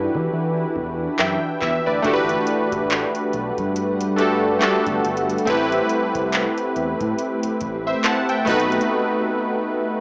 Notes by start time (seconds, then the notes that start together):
Already playing: E3 D4 E4 F#4 G4 A4 B4 D5
0.15 E3, kick
0.33 E3
0.76 E2, kick
1.19 F#2 E5 G5, cross-stick, clap
1.61 E2 B4 E5, kick, clap
1.86 D2 B4 D5
1.92 D5
2.02 G1 G3 A3 D4 F#4 G4 B4 F#5, kick, closed hi-hat
2.07 A4
2.13 B4
2.29 closed hi-hat
2.47 closed hi-hat
2.72 A1, kick, closed hi-hat
2.90 clap, closed hi-hat
3.15 closed hi-hat
3.33 B1, closed hi-hat
3.58 G2, kick, closed hi-hat
3.76 closed hi-hat
4.00 closed hi-hat
4.16 A3 D4 F#4 G4, closed hi-hat
4.21 A4
4.59 A3 D4 F#4 G4, cross-stick, clap, closed hi-hat
4.64 A4
4.86 G1, kick, closed hi-hat
5.04 G1, closed hi-hat
5.17 closed hi-hat
5.29 closed hi-hat
5.38 closed hi-hat
5.45 A1 A3 C4 E4 G4, kick, closed hi-hat
5.50 B4
5.72 closed hi-hat
5.89 closed hi-hat
6.15 C2, kick, closed hi-hat
6.32 clap, closed hi-hat
6.58 closed hi-hat
6.76 E2, closed hi-hat
7.00 A2, kick, closed hi-hat
7.19 closed hi-hat
7.43 A1, closed hi-hat
7.61 A1, kick, closed hi-hat
7.87 C5 E5
8.04 F#5 A5, cross-stick, clap, closed hi-hat
8.29 E5 G5, closed hi-hat
8.45 B1 A3 B3 D#4 F#4, kick, closed hi-hat, open hi-hat
8.49 B4
8.60 closed hi-hat
8.72 closed hi-hat
8.81 closed hi-hat